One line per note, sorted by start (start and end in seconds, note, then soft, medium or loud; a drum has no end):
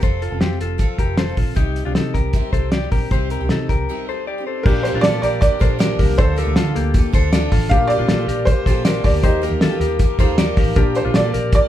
0.01 0.27 F1 medium
0.01 0.31 F3 medium
0.01 0.32 C4 medium
0.01 0.31 F4 medium
0.01 0.29 A4 medium
0.01 0.21 A4 medium
0.01 0.22 C5 medium
0.01 kick loud
0.01 closed hi-hat medium
0.22 0.42 F4 medium
0.22 0.41 A4 medium
0.22 closed hi-hat medium
0.30 0.40 F1 medium
0.30 0.79 C4 soft
0.30 0.78 F4 medium
0.30 0.79 A4 medium
0.41 0.58 F2 medium
0.41 0.61 C4 medium
0.41 0.61 G4 medium
0.41 snare loud
0.41 closed hi-hat medium
0.61 0.85 F1 medium
0.61 0.98 F4 medium
0.61 0.97 A4 medium
0.61 closed hi-hat medium
0.78 0.97 F3 medium
0.78 0.98 C4 medium
0.78 0.99 F4 medium
0.78 1.00 A4 medium
0.78 kick medium
0.78 closed hi-hat medium
0.98 1.31 F1 medium
0.98 1.28 F3 medium
0.98 1.28 C4 medium
0.98 1.28 F4 medium
0.98 1.19 G4 soft
0.98 1.26 A4 medium
0.98 1.18 A#4 medium
0.98 kick medium
0.98 closed hi-hat medium
1.17 1.36 A4 medium
1.17 1.38 C5 medium
1.17 snare loud
1.17 closed hi-hat medium
1.27 1.54 C4 soft
1.27 1.56 F4 medium
1.27 1.56 A4 medium
1.37 1.54 A#1 medium
1.37 1.57 F4 medium
1.37 1.56 A4 medium
1.37 kick medium
1.37 open hi-hat medium
1.55 1.81 C2 medium
1.55 1.85 C3 medium
1.55 1.85 G3 medium
1.55 1.85 C4 medium
1.55 1.86 D#4 medium
1.55 1.84 D#4 medium
1.55 1.84 G4 medium
1.55 1.85 G4 medium
1.55 kick loud
1.55 closed hi-hat medium
1.76 closed hi-hat medium
1.85 1.95 C2 medium
1.85 2.34 C4 soft
1.85 1.96 D4 medium
1.85 2.34 D#4 soft
1.85 1.95 F4 medium
1.85 2.36 G4 soft
1.95 2.12 C3 medium
1.95 2.15 D#4 medium
1.95 2.15 A4 medium
1.95 snare loud
1.95 closed hi-hat medium
2.14 2.39 C2 medium
2.14 2.51 G4 soft
2.14 2.51 A#4 medium
2.14 kick medium
2.14 closed hi-hat medium
2.33 2.53 C3 medium
2.33 2.52 G3 medium
2.33 2.54 C4 medium
2.33 2.54 D#4 medium
2.33 2.54 G4 medium
2.33 kick medium
2.33 closed hi-hat medium
2.53 2.86 C2 medium
2.53 2.82 G3 soft
2.53 2.83 C4 medium
2.53 2.82 D#4 medium
2.53 2.81 G4 medium
2.53 2.73 A4 medium
2.53 2.72 C5 medium
2.53 kick medium
2.53 closed hi-hat medium
2.72 2.91 G4 soft
2.72 2.91 D5 medium
2.72 snare loud
2.72 closed hi-hat medium
2.82 3.12 C4 soft
2.82 3.12 D#4 soft
2.82 3.11 G4 medium
2.91 3.08 A#1 medium
2.91 3.11 G4 medium
2.91 3.11 A#4 medium
2.91 kick medium
2.91 open hi-hat medium
3.11 3.35 C2 loud
3.11 3.41 C3 medium
3.11 3.41 G3 medium
3.11 3.41 C4 medium
3.11 3.41 D#4 medium
3.11 3.31 G4 medium
3.11 3.39 G4 medium
3.11 3.31 C5 medium
3.11 kick medium
3.11 closed hi-hat medium
3.30 3.50 G4 soft
3.30 3.50 A#4 medium
3.30 closed hi-hat medium
3.40 3.48 C2 medium
3.40 3.89 C4 soft
3.40 3.89 D#4 soft
3.40 3.91 G4 medium
3.49 3.66 C3 medium
3.49 3.70 D#4 medium
3.49 3.69 A4 medium
3.49 snare medium
3.49 closed hi-hat medium
3.69 3.85 C2 medium
3.69 4.06 G4 soft
3.69 4.05 A#4 medium
3.69 kick medium
3.69 closed hi-hat medium
3.89 4.08 C3 medium
3.89 4.07 G3 medium
3.89 4.08 C4 medium
3.89 4.09 D#4 medium
3.89 4.09 G4 medium
4.09 4.37 G3 medium
4.09 4.37 C4 medium
4.09 4.38 D#4 medium
4.09 4.37 G4 medium
4.09 4.28 A4 medium
4.09 4.27 C5 medium
4.27 4.47 G4 medium
4.27 4.46 D5 medium
4.38 4.67 C4 soft
4.38 4.67 D#4 soft
4.38 4.66 G4 medium
4.47 4.66 A4 soft
4.47 4.65 C5 medium
4.63 4.90 A#1 loud
4.63 4.83 F3 medium
4.63 6.15 A#3 medium
4.63 4.84 A#3 medium
4.63 6.15 D4 medium
4.63 4.93 D4 medium
4.63 6.16 F4 medium
4.63 4.93 G4 medium
4.63 6.16 G4 medium
4.63 4.84 A#4 loud
4.63 kick loud
4.63 crash loud
4.69 4.85 D4 medium
4.69 4.86 G4 medium
4.83 5.13 F3 medium
4.83 5.14 A#3 medium
4.83 5.12 D4 medium
4.83 5.03 C5 medium
4.83 closed hi-hat medium
4.87 5.11 G4 medium
4.94 5.02 A#1 loud
4.94 5.05 D4 medium
4.94 5.04 F4 medium
5.01 5.20 A#2 loud
5.01 5.23 F4 medium
5.01 5.23 A4 medium
5.01 5.21 D5 loud
5.01 snare loud
5.01 closed hi-hat loud
5.12 5.39 F3 soft
5.12 5.40 A#3 medium
5.12 5.41 D4 medium
5.12 5.41 G4 medium
5.22 5.47 A#1 loud
5.22 5.60 G4 medium
5.22 5.59 A#4 medium
5.22 5.39 D5 loud
5.22 closed hi-hat medium
5.41 5.59 F3 medium
5.41 5.59 A#3 medium
5.41 5.60 D4 medium
5.41 5.60 G4 medium
5.41 5.61 D5 loud
5.41 kick loud
5.41 closed hi-hat loud
5.59 5.93 A#1 loud
5.59 5.77 A#2 medium
5.59 5.78 D3 medium
5.59 5.78 F3 medium
5.59 5.78 A#3 medium
5.59 5.79 D4 medium
5.59 5.79 G4 medium
5.59 5.81 A4 medium
5.59 6.20 A#4 loud
5.59 5.80 C5 medium
5.59 kick loud
5.59 closed hi-hat medium
5.79 6.18 A#2 medium
5.79 7.12 D3 medium
5.79 6.17 F3 medium
5.79 6.17 A#3 medium
5.79 6.18 D4 medium
5.79 6.18 G4 medium
5.79 5.98 A#4 medium
5.79 5.99 D5 medium
5.79 snare loud
5.79 closed hi-hat loud
5.99 6.15 C2 loud
5.99 6.19 G4 medium
5.99 6.18 A#4 medium
5.99 kick medium
5.99 open hi-hat medium
6.17 6.43 D2 loud
6.17 6.35 F3 medium
6.17 7.68 A3 medium
6.17 6.37 D4 medium
6.17 7.68 D4 medium
6.17 6.37 F4 medium
6.17 7.69 F4 medium
6.17 6.37 A4 medium
6.17 6.38 A4 medium
6.17 7.69 A4 medium
6.17 6.38 C5 loud
6.17 kick loud
6.17 closed hi-hat medium
6.36 6.66 F3 medium
6.36 6.66 D4 medium
6.36 6.66 F4 medium
6.36 6.57 G4 medium
6.36 7.10 A4 medium
6.36 6.65 A4 medium
6.36 6.56 A#4 medium
6.36 closed hi-hat medium
6.47 6.55 D2 loud
6.56 6.73 D3 loud
6.56 6.76 F4 medium
6.56 6.76 A4 medium
6.56 snare loud
6.56 closed hi-hat loud
6.66 6.94 D4 soft
6.66 6.95 F4 medium
6.66 6.95 A4 medium
6.75 7.00 D2 medium
6.75 7.11 A#3 medium
6.75 7.12 G4 medium
6.75 closed hi-hat medium
6.94 7.12 F3 medium
6.94 7.13 D4 medium
6.94 7.13 F4 medium
6.94 7.13 A4 medium
6.94 kick loud
6.94 closed hi-hat loud
7.13 7.46 D2 loud
7.13 7.32 D3 medium
7.13 7.32 F3 medium
7.13 7.33 D4 medium
7.13 7.33 F4 medium
7.13 7.33 A4 loud
7.13 7.33 A4 medium
7.13 7.32 C5 medium
7.13 kick loud
7.13 closed hi-hat medium
7.33 7.71 D3 medium
7.33 7.71 F3 medium
7.33 7.72 D4 loud
7.33 7.72 F4 loud
7.33 7.51 A4 medium
7.33 7.72 A4 loud
7.33 7.52 D5 medium
7.33 snare loud
7.33 closed hi-hat medium
7.52 7.68 A1 medium
7.52 7.71 F4 medium
7.52 7.71 A4 medium
7.52 kick loud
7.52 open hi-hat medium
7.69 7.95 A#1 loud
7.69 7.88 F3 medium
7.69 9.21 A#3 medium
7.69 7.89 A#3 medium
7.69 7.98 D4 medium
7.69 9.22 D4 medium
7.69 7.91 F4 medium
7.69 9.22 F4 medium
7.69 7.98 G4 medium
7.69 7.90 F5 loud
7.69 kick loud
7.69 closed hi-hat loud
7.73 9.22 G4 medium
7.73 7.92 G4 medium
7.87 8.19 F3 medium
7.87 8.19 A#3 medium
7.87 8.48 D5 loud
7.87 closed hi-hat medium
7.92 8.19 F4 medium
7.92 8.18 G4 medium
7.99 8.08 A#1 loud
7.99 8.09 D4 medium
7.99 8.08 F4 medium
8.08 8.25 A#2 loud
8.08 8.29 F4 medium
8.08 8.28 A4 medium
8.08 snare loud
8.08 closed hi-hat medium
8.19 8.46 F3 soft
8.19 8.48 A#3 soft
8.19 8.48 F4 medium
8.19 8.48 G4 medium
8.27 8.52 A#1 medium
8.27 8.65 G4 medium
8.27 8.64 A#4 medium
8.27 closed hi-hat loud
8.45 8.67 F3 medium
8.45 8.67 A#3 medium
8.45 9.06 C5 loud
8.45 kick loud
8.45 closed hi-hat medium
8.49 8.68 F4 medium
8.49 8.68 G4 medium
8.66 8.99 A#1 medium
8.66 8.84 A#2 medium
8.66 8.84 D3 medium
8.66 8.85 F3 medium
8.66 8.85 A#3 medium
8.66 8.85 F4 medium
8.66 8.86 G4 medium
8.66 8.86 A4 medium
8.66 8.85 C5 medium
8.66 kick loud
8.66 closed hi-hat medium
8.85 9.24 A#2 medium
8.85 9.24 D3 medium
8.85 9.22 F3 loud
8.85 9.23 A#3 medium
8.85 9.24 F4 medium
8.85 9.25 G4 medium
8.85 9.03 A#4 medium
8.85 9.05 D5 medium
8.85 snare loud
8.85 closed hi-hat loud
9.04 9.21 D2 medium
9.04 9.23 G4 medium
9.04 9.24 A#4 medium
9.04 9.24 D5 loud
9.04 kick medium
9.04 open hi-hat medium
9.22 9.48 D#2 loud
9.22 9.40 F3 medium
9.22 10.17 A#3 medium
9.22 9.42 A#3 medium
9.22 10.17 D#4 medium
9.22 9.43 F4 medium
9.22 10.18 F4 medium
9.22 9.43 G4 medium
9.22 10.18 G4 medium
9.22 9.43 G4 medium
9.22 9.43 C5 loud
9.22 9.59 D#5 medium
9.22 kick loud
9.22 closed hi-hat medium
9.42 9.71 F3 medium
9.42 9.72 A#3 medium
9.42 9.72 F4 medium
9.42 9.62 G4 medium
9.42 9.70 G4 medium
9.42 9.62 A#4 medium
9.42 closed hi-hat medium
9.51 9.60 D#2 loud
9.61 9.78 D#3 loud
9.61 9.81 F4 medium
9.61 9.80 A4 loud
9.61 snare loud
9.61 closed hi-hat medium
9.71 9.99 A#3 medium
9.71 10.00 F4 medium
9.71 10.00 G4 medium
9.80 10.05 D#2 medium
9.80 10.17 G4 medium
9.80 10.17 A#4 medium
9.80 closed hi-hat medium
9.99 10.18 F3 medium
9.99 10.18 A#3 medium
9.99 10.19 F4 medium
9.99 10.19 G4 medium
9.99 kick loud
9.99 closed hi-hat loud
10.19 10.51 D#2 loud
10.19 10.37 D#3 medium
10.19 10.38 F3 medium
10.19 10.75 A#3 medium
10.19 10.38 A#3 medium
10.19 10.77 D#4 medium
10.19 10.38 F4 medium
10.19 10.76 F4 medium
10.19 10.77 G4 medium
10.19 10.39 G4 medium
10.19 10.39 A4 medium
10.19 10.38 C5 medium
10.19 kick loud
10.19 closed hi-hat medium
10.38 10.76 D#3 loud
10.38 10.76 F3 medium
10.38 10.76 A#3 loud
10.38 10.78 F4 medium
10.38 10.77 G4 loud
10.38 10.57 A#4 medium
10.38 10.58 D5 medium
10.38 snare loud
10.38 closed hi-hat loud
10.57 10.74 A1 loud
10.57 10.76 G4 medium
10.57 10.77 A#4 medium
10.57 kick loud
10.57 open hi-hat medium
10.76 11.01 A#1 loud
10.76 10.93 F3 medium
10.76 11.68 A#3 medium
10.76 10.94 A#3 medium
10.76 11.68 D4 medium
10.76 11.04 D4 medium
10.76 11.68 F4 medium
10.76 10.96 F4 medium
10.76 11.04 G4 loud
10.76 11.68 G4 medium
10.76 10.96 G4 medium
10.76 10.81 A#4 loud
10.76 kick loud
10.76 closed hi-hat medium
10.95 11.24 F3 medium
10.95 11.24 A#3 medium
10.95 11.24 F4 medium
10.95 11.23 G4 medium
10.95 11.01 C5 medium
10.95 closed hi-hat medium
11.05 11.14 A#1 loud
11.05 11.15 D4 medium
11.05 11.15 F4 medium
11.14 11.31 A#2 loud
11.14 11.34 F4 medium
11.14 11.33 A4 medium
11.14 11.53 D5 loud
11.14 snare loud
11.14 closed hi-hat medium
11.24 11.51 F3 medium
11.24 11.52 A#3 medium
11.24 11.53 F4 soft
11.24 11.53 G4 medium
11.34 11.58 A#1 loud
11.34 11.68 G4 medium
11.34 11.68 A#4 medium
11.34 closed hi-hat medium
11.52 11.68 F3 medium
11.52 11.68 A#3 medium
11.52 11.68 F4 medium
11.52 11.68 G4 medium
11.52 11.68 D5 loud
11.52 kick loud
11.52 closed hi-hat loud